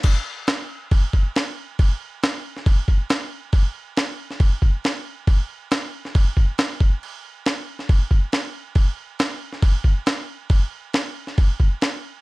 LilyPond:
\new DrumStaff \with { instrumentName = "Drums" } \drummode { \time 4/4 \tempo 4 = 138 <cymc bd>4 <cymc sn>4 <cymc bd>8 bd8 <cymc sn>4 | <cymc bd>4 <cymc sn>8. sn16 <cymc bd>8 bd8 <cymc sn>4 | <cymc bd>4 <cymc sn>8. sn16 <cymc bd>8 bd8 <cymc sn>4 | <cymc bd>4 <cymc sn>8. sn16 <cymc bd>8 bd8 <cymc sn>8 bd8 |
cymc4 <cymc sn>8. sn16 <cymc bd>8 bd8 <cymc sn>4 | <cymc bd>4 <cymc sn>8. sn16 <cymc bd>8 bd8 <cymc sn>4 | <cymc bd>4 <cymc sn>8. sn16 <cymc bd>8 bd8 <cymc sn>4 | }